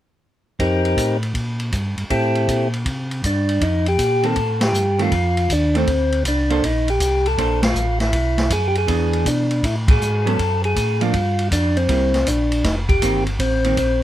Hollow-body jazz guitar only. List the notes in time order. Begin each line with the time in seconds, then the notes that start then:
4.23 D#3 A#3 C4
4.99 D#3 A3 C4
5.74 D#3 A3 C4
6.50 A#3 D4 A4 C5
7.38 A#3 D4 A4 C5
8.87 E3 B3 D4 G#4
10.25 F#3 B3 C#4
11.01 F3 A#3 D4
11.89 G3 A#3 E4
13.02 D#3 A#3 C4
13.65 D#3 A#3 C4